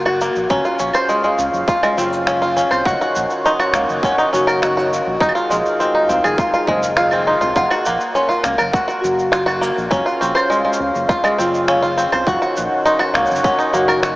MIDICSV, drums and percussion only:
0, 0, Header, 1, 2, 480
1, 0, Start_track
1, 0, Tempo, 588235
1, 410, Time_signature, 4, 2, 24, 8
1, 11552, End_track
2, 0, Start_track
2, 0, Title_t, "Drums"
2, 44, Note_on_c, 9, 75, 77
2, 126, Note_off_c, 9, 75, 0
2, 169, Note_on_c, 9, 69, 72
2, 251, Note_off_c, 9, 69, 0
2, 289, Note_on_c, 9, 69, 29
2, 371, Note_off_c, 9, 69, 0
2, 406, Note_on_c, 9, 69, 41
2, 409, Note_on_c, 9, 36, 104
2, 488, Note_off_c, 9, 69, 0
2, 490, Note_off_c, 9, 36, 0
2, 528, Note_on_c, 9, 69, 21
2, 609, Note_off_c, 9, 69, 0
2, 646, Note_on_c, 9, 69, 77
2, 727, Note_off_c, 9, 69, 0
2, 763, Note_on_c, 9, 75, 66
2, 766, Note_on_c, 9, 69, 33
2, 844, Note_off_c, 9, 75, 0
2, 848, Note_off_c, 9, 69, 0
2, 888, Note_on_c, 9, 69, 41
2, 969, Note_off_c, 9, 69, 0
2, 1009, Note_on_c, 9, 69, 19
2, 1090, Note_off_c, 9, 69, 0
2, 1130, Note_on_c, 9, 69, 75
2, 1211, Note_off_c, 9, 69, 0
2, 1254, Note_on_c, 9, 69, 31
2, 1335, Note_off_c, 9, 69, 0
2, 1369, Note_on_c, 9, 36, 121
2, 1373, Note_on_c, 9, 69, 45
2, 1450, Note_off_c, 9, 36, 0
2, 1454, Note_off_c, 9, 69, 0
2, 1493, Note_on_c, 9, 75, 75
2, 1497, Note_on_c, 9, 69, 23
2, 1575, Note_off_c, 9, 75, 0
2, 1578, Note_off_c, 9, 69, 0
2, 1616, Note_on_c, 9, 69, 79
2, 1697, Note_off_c, 9, 69, 0
2, 1737, Note_on_c, 9, 69, 34
2, 1819, Note_off_c, 9, 69, 0
2, 1852, Note_on_c, 9, 26, 79
2, 1856, Note_on_c, 9, 69, 44
2, 1934, Note_off_c, 9, 26, 0
2, 1938, Note_off_c, 9, 69, 0
2, 1977, Note_on_c, 9, 69, 22
2, 2058, Note_off_c, 9, 69, 0
2, 2098, Note_on_c, 9, 69, 73
2, 2179, Note_off_c, 9, 69, 0
2, 2215, Note_on_c, 9, 75, 71
2, 2218, Note_on_c, 9, 69, 31
2, 2296, Note_off_c, 9, 75, 0
2, 2300, Note_off_c, 9, 69, 0
2, 2329, Note_on_c, 9, 36, 115
2, 2341, Note_on_c, 9, 69, 43
2, 2411, Note_off_c, 9, 36, 0
2, 2423, Note_off_c, 9, 69, 0
2, 2459, Note_on_c, 9, 69, 21
2, 2541, Note_off_c, 9, 69, 0
2, 2575, Note_on_c, 9, 69, 77
2, 2656, Note_off_c, 9, 69, 0
2, 2693, Note_on_c, 9, 69, 31
2, 2775, Note_off_c, 9, 69, 0
2, 2819, Note_on_c, 9, 69, 41
2, 2900, Note_off_c, 9, 69, 0
2, 2934, Note_on_c, 9, 75, 65
2, 2938, Note_on_c, 9, 69, 20
2, 3015, Note_off_c, 9, 75, 0
2, 3019, Note_off_c, 9, 69, 0
2, 3049, Note_on_c, 9, 26, 74
2, 3052, Note_on_c, 9, 69, 83
2, 3130, Note_off_c, 9, 26, 0
2, 3134, Note_off_c, 9, 69, 0
2, 3175, Note_on_c, 9, 69, 32
2, 3257, Note_off_c, 9, 69, 0
2, 3288, Note_on_c, 9, 36, 125
2, 3295, Note_on_c, 9, 69, 44
2, 3370, Note_off_c, 9, 36, 0
2, 3377, Note_off_c, 9, 69, 0
2, 3416, Note_on_c, 9, 69, 24
2, 3498, Note_off_c, 9, 69, 0
2, 3539, Note_on_c, 9, 69, 81
2, 3621, Note_off_c, 9, 69, 0
2, 3655, Note_on_c, 9, 75, 66
2, 3659, Note_on_c, 9, 69, 33
2, 3737, Note_off_c, 9, 75, 0
2, 3740, Note_off_c, 9, 69, 0
2, 3777, Note_on_c, 9, 26, 72
2, 3781, Note_on_c, 9, 69, 46
2, 3859, Note_off_c, 9, 26, 0
2, 3862, Note_off_c, 9, 69, 0
2, 3904, Note_on_c, 9, 69, 22
2, 3986, Note_off_c, 9, 69, 0
2, 4022, Note_on_c, 9, 69, 74
2, 4104, Note_off_c, 9, 69, 0
2, 4247, Note_on_c, 9, 36, 113
2, 4259, Note_on_c, 9, 69, 41
2, 4315, Note_on_c, 9, 75, 74
2, 4329, Note_off_c, 9, 36, 0
2, 4341, Note_off_c, 9, 69, 0
2, 4377, Note_on_c, 9, 69, 21
2, 4396, Note_off_c, 9, 75, 0
2, 4458, Note_off_c, 9, 69, 0
2, 4496, Note_on_c, 9, 69, 77
2, 4577, Note_off_c, 9, 69, 0
2, 4615, Note_on_c, 9, 69, 29
2, 4697, Note_off_c, 9, 69, 0
2, 4736, Note_on_c, 9, 69, 43
2, 4818, Note_off_c, 9, 69, 0
2, 4973, Note_on_c, 9, 69, 76
2, 5055, Note_off_c, 9, 69, 0
2, 5093, Note_on_c, 9, 75, 76
2, 5097, Note_on_c, 9, 69, 34
2, 5175, Note_off_c, 9, 75, 0
2, 5179, Note_off_c, 9, 69, 0
2, 5207, Note_on_c, 9, 36, 127
2, 5214, Note_on_c, 9, 69, 41
2, 5288, Note_off_c, 9, 36, 0
2, 5295, Note_off_c, 9, 69, 0
2, 5333, Note_on_c, 9, 69, 23
2, 5414, Note_off_c, 9, 69, 0
2, 5446, Note_on_c, 9, 36, 65
2, 5528, Note_off_c, 9, 36, 0
2, 5571, Note_on_c, 9, 69, 74
2, 5653, Note_off_c, 9, 69, 0
2, 5685, Note_on_c, 9, 26, 77
2, 5689, Note_on_c, 9, 69, 43
2, 5766, Note_off_c, 9, 26, 0
2, 5770, Note_off_c, 9, 69, 0
2, 5803, Note_on_c, 9, 75, 71
2, 5807, Note_on_c, 9, 69, 23
2, 5885, Note_off_c, 9, 75, 0
2, 5888, Note_off_c, 9, 69, 0
2, 6049, Note_on_c, 9, 69, 32
2, 6130, Note_off_c, 9, 69, 0
2, 6166, Note_on_c, 9, 69, 43
2, 6167, Note_on_c, 9, 36, 102
2, 6248, Note_off_c, 9, 69, 0
2, 6249, Note_off_c, 9, 36, 0
2, 6287, Note_on_c, 9, 75, 69
2, 6291, Note_on_c, 9, 69, 19
2, 6369, Note_off_c, 9, 75, 0
2, 6373, Note_off_c, 9, 69, 0
2, 6408, Note_on_c, 9, 69, 80
2, 6490, Note_off_c, 9, 69, 0
2, 6531, Note_on_c, 9, 69, 30
2, 6612, Note_off_c, 9, 69, 0
2, 6652, Note_on_c, 9, 69, 39
2, 6734, Note_off_c, 9, 69, 0
2, 6777, Note_on_c, 9, 69, 18
2, 6858, Note_off_c, 9, 69, 0
2, 6887, Note_on_c, 9, 26, 64
2, 6890, Note_on_c, 9, 69, 71
2, 6968, Note_off_c, 9, 26, 0
2, 6972, Note_off_c, 9, 69, 0
2, 7007, Note_on_c, 9, 75, 78
2, 7011, Note_on_c, 9, 69, 31
2, 7089, Note_off_c, 9, 75, 0
2, 7093, Note_off_c, 9, 69, 0
2, 7127, Note_on_c, 9, 36, 125
2, 7135, Note_on_c, 9, 69, 44
2, 7209, Note_off_c, 9, 36, 0
2, 7217, Note_off_c, 9, 69, 0
2, 7257, Note_on_c, 9, 69, 22
2, 7338, Note_off_c, 9, 69, 0
2, 7378, Note_on_c, 9, 69, 75
2, 7460, Note_off_c, 9, 69, 0
2, 7498, Note_on_c, 9, 69, 30
2, 7579, Note_off_c, 9, 69, 0
2, 7611, Note_on_c, 9, 26, 72
2, 7615, Note_on_c, 9, 69, 44
2, 7693, Note_off_c, 9, 26, 0
2, 7697, Note_off_c, 9, 69, 0
2, 7733, Note_on_c, 9, 75, 74
2, 7737, Note_on_c, 9, 69, 21
2, 7814, Note_off_c, 9, 75, 0
2, 7818, Note_off_c, 9, 69, 0
2, 7854, Note_on_c, 9, 69, 71
2, 7935, Note_off_c, 9, 69, 0
2, 7979, Note_on_c, 9, 69, 31
2, 8061, Note_off_c, 9, 69, 0
2, 8089, Note_on_c, 9, 36, 108
2, 8096, Note_on_c, 9, 69, 42
2, 8171, Note_off_c, 9, 36, 0
2, 8178, Note_off_c, 9, 69, 0
2, 8219, Note_on_c, 9, 69, 20
2, 8301, Note_off_c, 9, 69, 0
2, 8339, Note_on_c, 9, 69, 75
2, 8420, Note_off_c, 9, 69, 0
2, 8457, Note_on_c, 9, 75, 77
2, 8461, Note_on_c, 9, 69, 29
2, 8538, Note_off_c, 9, 75, 0
2, 8542, Note_off_c, 9, 69, 0
2, 8579, Note_on_c, 9, 69, 41
2, 8661, Note_off_c, 9, 69, 0
2, 8756, Note_on_c, 9, 69, 69
2, 8837, Note_off_c, 9, 69, 0
2, 8936, Note_on_c, 9, 69, 30
2, 9018, Note_off_c, 9, 69, 0
2, 9050, Note_on_c, 9, 36, 113
2, 9058, Note_on_c, 9, 69, 42
2, 9132, Note_off_c, 9, 36, 0
2, 9140, Note_off_c, 9, 69, 0
2, 9176, Note_on_c, 9, 75, 82
2, 9180, Note_on_c, 9, 69, 20
2, 9258, Note_off_c, 9, 75, 0
2, 9261, Note_off_c, 9, 69, 0
2, 9299, Note_on_c, 9, 69, 71
2, 9380, Note_off_c, 9, 69, 0
2, 9419, Note_on_c, 9, 69, 31
2, 9500, Note_off_c, 9, 69, 0
2, 9533, Note_on_c, 9, 26, 70
2, 9537, Note_on_c, 9, 69, 39
2, 9615, Note_off_c, 9, 26, 0
2, 9618, Note_off_c, 9, 69, 0
2, 9653, Note_on_c, 9, 69, 21
2, 9735, Note_off_c, 9, 69, 0
2, 9775, Note_on_c, 9, 69, 64
2, 9857, Note_off_c, 9, 69, 0
2, 9892, Note_on_c, 9, 75, 79
2, 9896, Note_on_c, 9, 69, 29
2, 9974, Note_off_c, 9, 75, 0
2, 9977, Note_off_c, 9, 69, 0
2, 10010, Note_on_c, 9, 36, 95
2, 10017, Note_on_c, 9, 69, 40
2, 10091, Note_off_c, 9, 36, 0
2, 10098, Note_off_c, 9, 69, 0
2, 10133, Note_on_c, 9, 69, 18
2, 10215, Note_off_c, 9, 69, 0
2, 10253, Note_on_c, 9, 69, 73
2, 10335, Note_off_c, 9, 69, 0
2, 10492, Note_on_c, 9, 69, 38
2, 10574, Note_off_c, 9, 69, 0
2, 10608, Note_on_c, 9, 75, 74
2, 10612, Note_on_c, 9, 69, 17
2, 10690, Note_off_c, 9, 75, 0
2, 10693, Note_off_c, 9, 69, 0
2, 10732, Note_on_c, 9, 26, 68
2, 10736, Note_on_c, 9, 69, 30
2, 10813, Note_off_c, 9, 26, 0
2, 10817, Note_off_c, 9, 69, 0
2, 10817, Note_on_c, 9, 69, 45
2, 10859, Note_off_c, 9, 69, 0
2, 10859, Note_on_c, 9, 69, 32
2, 10895, Note_off_c, 9, 69, 0
2, 10895, Note_on_c, 9, 69, 59
2, 10970, Note_on_c, 9, 36, 117
2, 10972, Note_off_c, 9, 69, 0
2, 10972, Note_on_c, 9, 69, 42
2, 11051, Note_off_c, 9, 36, 0
2, 11053, Note_off_c, 9, 69, 0
2, 11092, Note_on_c, 9, 69, 23
2, 11174, Note_off_c, 9, 69, 0
2, 11211, Note_on_c, 9, 69, 73
2, 11292, Note_off_c, 9, 69, 0
2, 11332, Note_on_c, 9, 75, 78
2, 11336, Note_on_c, 9, 69, 31
2, 11413, Note_off_c, 9, 75, 0
2, 11417, Note_off_c, 9, 69, 0
2, 11450, Note_on_c, 9, 26, 71
2, 11454, Note_on_c, 9, 69, 41
2, 11532, Note_off_c, 9, 26, 0
2, 11535, Note_off_c, 9, 69, 0
2, 11552, End_track
0, 0, End_of_file